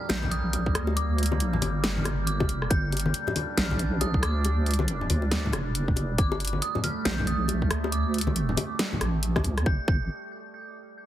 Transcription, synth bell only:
0, 0, Header, 1, 2, 480
1, 0, Start_track
1, 0, Key_signature, -2, "minor"
1, 0, Tempo, 434783
1, 1068, Time_signature, 4, 2, 24, 8
1, 12210, End_track
2, 0, Start_track
2, 0, Title_t, "Synth bell"
2, 0, Program_c, 0, 98
2, 0, Note_on_c, 0, 89, 106
2, 104, Note_on_c, 0, 91, 116
2, 113, Note_off_c, 0, 89, 0
2, 344, Note_on_c, 0, 87, 105
2, 353, Note_off_c, 0, 91, 0
2, 1065, Note_on_c, 0, 86, 109
2, 1088, Note_off_c, 0, 87, 0
2, 2490, Note_off_c, 0, 86, 0
2, 2503, Note_on_c, 0, 86, 94
2, 2984, Note_on_c, 0, 91, 113
2, 3000, Note_off_c, 0, 86, 0
2, 3902, Note_off_c, 0, 91, 0
2, 3944, Note_on_c, 0, 89, 102
2, 4424, Note_on_c, 0, 87, 93
2, 4440, Note_off_c, 0, 89, 0
2, 4533, Note_off_c, 0, 87, 0
2, 4664, Note_on_c, 0, 86, 82
2, 6062, Note_off_c, 0, 86, 0
2, 6828, Note_on_c, 0, 86, 101
2, 7310, Note_on_c, 0, 87, 102
2, 7322, Note_off_c, 0, 86, 0
2, 7532, Note_off_c, 0, 87, 0
2, 7548, Note_on_c, 0, 89, 104
2, 7785, Note_on_c, 0, 91, 120
2, 7795, Note_off_c, 0, 89, 0
2, 8009, Note_off_c, 0, 91, 0
2, 8027, Note_on_c, 0, 87, 108
2, 8745, Note_on_c, 0, 86, 91
2, 8769, Note_off_c, 0, 87, 0
2, 10382, Note_off_c, 0, 86, 0
2, 10666, Note_on_c, 0, 91, 89
2, 10820, Note_off_c, 0, 91, 0
2, 10907, Note_on_c, 0, 91, 91
2, 11131, Note_off_c, 0, 91, 0
2, 12210, End_track
0, 0, End_of_file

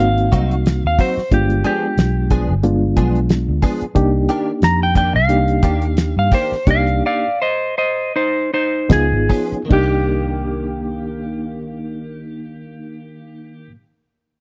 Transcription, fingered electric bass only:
0, 0, Header, 1, 3, 480
1, 0, Start_track
1, 0, Key_signature, -3, "minor"
1, 0, Tempo, 661521
1, 956, Time_signature, 4, 2, 24, 8
1, 3838, Tempo, 699301
1, 5278, Tempo, 756620
1, 6238, Tempo, 805369
1, 6718, Tempo, 825309
1, 9450, End_track
2, 0, Start_track
2, 0, Title_t, "Fingered electric bass"
2, 0, Program_c, 0, 33
2, 0, Note_on_c, 0, 32, 89
2, 216, Note_off_c, 0, 32, 0
2, 236, Note_on_c, 0, 36, 85
2, 587, Note_off_c, 0, 36, 0
2, 614, Note_on_c, 0, 39, 82
2, 712, Note_off_c, 0, 39, 0
2, 953, Note_on_c, 0, 31, 98
2, 1180, Note_off_c, 0, 31, 0
2, 1432, Note_on_c, 0, 35, 83
2, 1806, Note_on_c, 0, 31, 84
2, 1817, Note_off_c, 0, 35, 0
2, 2132, Note_off_c, 0, 31, 0
2, 2151, Note_on_c, 0, 35, 86
2, 2502, Note_off_c, 0, 35, 0
2, 2528, Note_on_c, 0, 38, 81
2, 2627, Note_off_c, 0, 38, 0
2, 2869, Note_on_c, 0, 36, 94
2, 3096, Note_off_c, 0, 36, 0
2, 3353, Note_on_c, 0, 41, 80
2, 3732, Note_on_c, 0, 36, 83
2, 3743, Note_off_c, 0, 41, 0
2, 4052, Note_off_c, 0, 36, 0
2, 4072, Note_on_c, 0, 39, 91
2, 4416, Note_off_c, 0, 39, 0
2, 4440, Note_on_c, 0, 43, 84
2, 4539, Note_off_c, 0, 43, 0
2, 4785, Note_on_c, 0, 36, 98
2, 5015, Note_off_c, 0, 36, 0
2, 6238, Note_on_c, 0, 37, 95
2, 6361, Note_off_c, 0, 37, 0
2, 6368, Note_on_c, 0, 32, 83
2, 6468, Note_off_c, 0, 32, 0
2, 6718, Note_on_c, 0, 36, 78
2, 9034, Note_off_c, 0, 36, 0
2, 9450, End_track
3, 0, Start_track
3, 0, Title_t, "Muted fingered electric bass strokes"
3, 850, Note_on_c, 9, 29, 33
3, 923, Note_off_c, 9, 29, 0
3, 2771, Note_on_c, 9, 29, 36
3, 2843, Note_off_c, 9, 29, 0
3, 4682, Note_on_c, 9, 29, 31
3, 4750, Note_off_c, 9, 29, 0
3, 6609, Note_on_c, 9, 29, 34
3, 6668, Note_off_c, 9, 29, 0
3, 9450, End_track
0, 0, End_of_file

